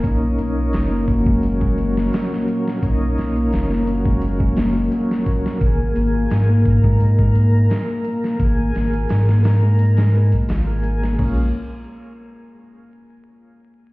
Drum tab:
CC |----------------|----------------|----------------|----------------|
HH |x-x-x-x-x-x-x-x-|x-xxx-x-x-o-x-x-|x-x-x-x-x-x-x-x-|x-xxx-o-xo-xo-x-|
SD |----o------ooo-o|--o-oo----o--o-o|----o-------o--o|--o-ooo--o--o--o|
BD |o-----oo-o------|o------o-o----o-|o-----oo-o------|o---------------|

CC |x---------------|
HH |----------------|
SD |----------------|
BD |o---------------|